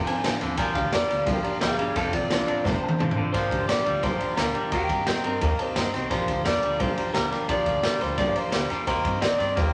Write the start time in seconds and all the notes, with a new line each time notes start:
Already playing: F2 C3
0.07 C4 D4 A4 C5 F5 G#5 A5, muted upright bass stroke, ride
0.24 A1 F2 D3 F3 C4 D4 A4 C5 F5 A5, snare, ride
0.41 D#2 F2 D3 C4 D4 A4 C5 F5 A5, snare, ride
0.57 A#1 A#2 D3 F3 A#3 D4 G4 D5 F5 G#5 A#5, kick, snare, ride
0.75 D2 F3 A#3 D4 G4 D5 F5 A#5, kick, ride
0.91 F2 A#2 D3 F3 G3 A#3 D4 G4 D5 F5 A#5, snare, ride
1.09 D2 A#2 G3 A#3 D4 G4 D5 F5 A#5, snare, ride
1.13 F3
1.26 A#1 A#2 F3 A#3 D4 G4 D5 F5 G5, kick, snare, ride
1.43 F3 A#3 D4 G4 D5 F5 A#5, muted upright bass stroke, ride
1.61 D2 A#2 D3 F3 G3 A#3 D4 G4 G#4 D5 F5 A#5, snare, ride
1.78 G1 A#2 F3 G3 A#3 D4 G4 G#4 D5 F5 A#5, ride
1.95 F1 F2 C3 F3 C4 D4 A4 C5 F5 A5, kick, snare, ride
2.12 A1 C4 D4 F4 A4 C5 D5 F5 A5, kick, ride
2.30 C2 F2 D3 F3 C4 D4 F4 A4 C5 D5 F5 A5, snare, ride
2.46 A1 F2 D3 C4 D4 F4 A4 C5 D5 F5 A5, ride
2.64 F1 F2 C3 F3 C4 D4 A4 C5 F5 A5, kick, snare
2.81 C4 D4 A4 C5 F5 A5, muted upright bass stroke
2.88 high tom
2.98 A1 F2 D3 F3 C4 D4 A4 C5 F5 A5, mid tom
3.11 mid tom
3.16 A1 F2 D3 C4 D4 A4 C5 F5 A5
3.32 A#1 A#2 D3 F3 A#3 D4 G4 C5 D5 F5 A#5, kick, snare, ride
3.50 D2 F3 A#3 D4 G4 D5 A#5, kick, ride
3.68 F2 A#2 D3 F3 G3 A#3 D4 G4 D5, snare, ride
3.84 D2 A#2 F3 G3 A#3 D4 G4 D5 F5 A#5, ride
4.02 A#1 A#2 F3 A#3 D4 G4 C5 D5 F5 A#5, kick, snare, ride
4.18 F3 A#3 D4 G4 D5 F5 A#5, muted upright bass stroke, ride
4.35 D2 A#2 D3 F3 G3 A#3 D4 G4 A#4 D5 F5 A#5, snare, ride
4.53 G1 A#2 F3 G3 A#3 D4 G4 D5 F5 A#5, ride
4.70 D#2 D#3 G3 A#3 C4 G4 A#4 D#5 G5 A#5, kick, ride
4.88 G2 C4 G4 A#4 D#5 A#5, kick, ride
5.06 A#2 D#3 G3 C4 G4 A#4 D#5 G5 C6, snare, ride
5.23 G2 D#3 C4 G4 A#4 D#5 G5 A#5, ride
5.40 D#2 D#3 G3 A#3 C4 G4 A#4 D#5 G5 A#5, kick, ride
5.58 C4 G4 A#4 C5 D#5 G5 A5, muted upright bass stroke, ride
5.75 G2 D#3 G3 C4 G4 A#4 D#5 G5 A#5, snare, ride
5.93 C2 D#3 C4 G4 A#4 D#5 G5 A#5, snare, ride
6.10 A#1 A#2 D3 F3 A#3 D4 G4 C5 D5 F5 A#5, kick, snare, ride
6.27 D2 F3 A#3 D4 G4 D5 F5 A#5, kick, ride
6.45 F2 A#2 D3 F3 G3 A#3 D4 G4 D5 F5 A#5, snare, ride
6.62 D2 A#2 F3 G3 A#3 D4 G4 D5 F5 A#5, ride
6.79 A#1 A#2 F3 A#3 D4 G4 C5 D5 F5 A#5, kick, ride
6.96 F3 A#3 D4 G4 D5 F5 A#5, muted upright bass stroke, ride
7.13 D2 A#2 D3 F3 G3 A#3 D4 G4 A#4 D5 F5 A#5, snare, ride
7.30 G1 A#2 F3 G3 A#3 D4 G4 D5 F5 A#5, snare, ride
7.48 A#1 A#2 D3 F3 A#3 D4 G4 D5 F5 A#5, kick, ride
7.65 D2 F3 A#3 D4 G4 D5 F5 A#5, kick, ride
7.82 F2 A#2 D3 F3 G3 A#3 D4 D5 F5 A#5, snare, ride
7.86 G4
8.00 D2 A#2 F3 G3 A#3 D4 G4 C5 D5 F5 A#5, snare, ride
8.17 A#1 A#2 F3 A#3 D4 G4 D5 F5 A#5, kick, snare, ride
8.35 F3 A#3 D4 G4 C5 D5 F5 A#5, muted upright bass stroke, ride
8.52 D2 A#2 D3 F3 G3 A#3 D4 G4 D5 F5 A#5, snare, ride
8.69 F2 A#2 F3 G3 A#3 D4 G4 D5 A#5, snare, ride
8.86 D#2 D#3 G3 A#3 C4 G4 A#4 C5 D#5 G5 A#5, kick, snare, ride
9.04 G2 C4 G4 A#4 D#5 G5 A#5, kick, ride
9.21 A#2 D#3 G3 C4 G4 A#4 D5 D#5 G5 A#5, snare, ride
9.38 G2 D#3 C4 G4 A#4 D5 D#5 G5 A#5, snare, ride
9.42 C4
9.56 D#2 D#3 G3 A#3 C4 G4 C5 D#5 G5 A#5, kick, snare, ride
9.60 A#4